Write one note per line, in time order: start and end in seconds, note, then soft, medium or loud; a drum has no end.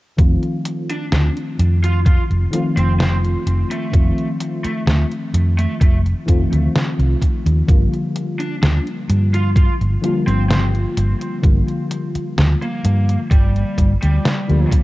0.17 0.34 F1 medium
0.17 2.47 D#3 medium
0.17 2.47 F3 medium
0.17 2.48 A3 medium
0.17 2.48 C4 medium
0.17 2.48 F4 medium
0.17 kick loud
0.17 closed hi-hat soft
0.43 closed hi-hat soft
0.65 closed hi-hat medium
0.90 1.05 D4 medium
0.90 closed hi-hat soft
1.12 1.28 D2 medium
1.12 1.29 D4 medium
1.12 snare loud
1.12 closed hi-hat soft
1.37 closed hi-hat soft
1.59 2.17 F2 medium
1.59 closed hi-hat medium
1.84 1.98 F4 medium
1.84 closed hi-hat medium
2.06 2.22 F4 medium
2.06 kick loud
2.06 closed hi-hat soft
2.30 2.45 F1 medium
2.30 closed hi-hat soft
2.51 3.87 D#3 medium
2.51 3.88 F3 medium
2.51 3.88 A3 medium
2.51 3.89 C4 medium
2.51 3.89 F4 medium
2.51 closed hi-hat medium
2.77 3.34 F1 medium
2.77 2.92 C4 medium
2.77 closed hi-hat soft
3.00 3.16 C4 medium
3.00 snare loud
3.00 closed hi-hat soft
3.25 closed hi-hat soft
3.46 3.62 F1 medium
3.46 closed hi-hat medium
3.71 4.27 A3 medium
3.71 closed hi-hat medium
3.92 4.10 F1 medium
3.92 6.22 D#3 medium
3.92 6.22 F3 medium
3.92 6.22 A3 medium
3.92 6.23 C4 medium
3.92 6.23 F4 medium
3.92 kick loud
3.92 closed hi-hat medium
4.18 closed hi-hat soft
4.40 closed hi-hat medium
4.64 4.79 A3 medium
4.64 muted fingered electric bass stroke soft
4.64 closed hi-hat soft
4.87 5.03 D2 medium
4.87 5.03 A3 medium
4.87 snare loud
4.87 closed hi-hat soft
5.12 closed hi-hat soft
5.34 5.65 F2 medium
5.34 closed hi-hat medium
5.59 5.73 A3 medium
5.59 closed hi-hat medium
5.81 6.12 F1 medium
5.81 5.97 A3 medium
5.81 kick loud
5.81 closed hi-hat soft
6.06 closed hi-hat soft
6.26 6.44 F1 medium
6.26 7.62 D#3 medium
6.26 7.63 F3 medium
6.26 7.63 A3 medium
6.26 7.63 C4 medium
6.26 7.64 F4 medium
6.26 kick medium
6.26 closed hi-hat medium
6.52 6.67 D2 medium
6.52 closed hi-hat soft
6.75 snare loud
6.75 closed hi-hat medium
6.99 7.14 C2 medium
6.99 closed hi-hat soft
7.22 kick medium
7.22 closed hi-hat medium
7.46 7.61 D#2 medium
7.46 closed hi-hat medium
7.67 7.84 G1 medium
7.67 9.97 D3 medium
7.67 9.97 F3 medium
7.67 9.98 G3 medium
7.67 9.98 A#3 medium
7.67 9.98 F4 medium
7.67 kick loud
7.67 closed hi-hat soft
7.93 closed hi-hat soft
8.16 closed hi-hat medium
8.39 8.54 D4 medium
8.39 closed hi-hat soft
8.63 8.78 D2 medium
8.63 8.78 D4 medium
8.63 snare loud
8.63 closed hi-hat soft
8.87 closed hi-hat soft
9.10 9.67 G2 medium
9.10 closed hi-hat medium
9.34 9.49 F4 medium
9.34 closed hi-hat soft
9.56 9.72 F4 medium
9.56 kick loud
9.56 closed hi-hat soft
9.81 9.95 G1 medium
9.81 closed hi-hat soft
10.02 11.38 D3 medium
10.02 11.38 F3 medium
10.02 11.38 G3 medium
10.02 11.39 A#3 medium
10.02 11.39 F4 medium
10.02 closed hi-hat medium
10.27 10.84 G1 medium
10.27 10.42 C4 medium
10.27 closed hi-hat soft
10.50 10.65 C4 medium
10.50 snare loud
10.50 closed hi-hat soft
10.75 closed hi-hat soft
10.97 11.13 G1 medium
10.97 closed hi-hat medium
11.21 closed hi-hat soft
11.42 11.59 G1 loud
11.42 13.72 D3 medium
11.42 13.72 F3 medium
11.42 13.72 G3 medium
11.42 13.73 A#3 medium
11.42 13.73 F4 medium
11.42 kick loud
11.42 closed hi-hat soft
11.68 closed hi-hat soft
11.91 closed hi-hat medium
12.15 muted fingered electric bass stroke soft
12.15 closed hi-hat soft
12.38 12.54 D2 medium
12.38 snare loud
12.38 closed hi-hat soft
12.62 13.18 A#3 medium
12.62 closed hi-hat soft
12.85 13.16 G2 medium
12.85 closed hi-hat medium
13.09 closed hi-hat soft
13.31 13.62 G1 medium
13.31 13.88 G3 medium
13.31 kick loud
13.31 closed hi-hat soft
13.56 closed hi-hat soft
13.78 13.94 G1 medium
13.78 kick medium
13.78 closed hi-hat medium
14.02 14.18 D2 medium
14.02 14.72 G3 medium
14.02 closed hi-hat soft
14.25 snare loud
14.25 closed hi-hat soft
14.48 14.64 D2 medium
14.48 14.78 D3 medium
14.48 14.78 F3 medium
14.48 14.78 G3 medium
14.48 14.78 A#3 medium
14.48 14.79 F4 medium
14.48 closed hi-hat soft
14.71 kick medium
14.71 closed hi-hat medium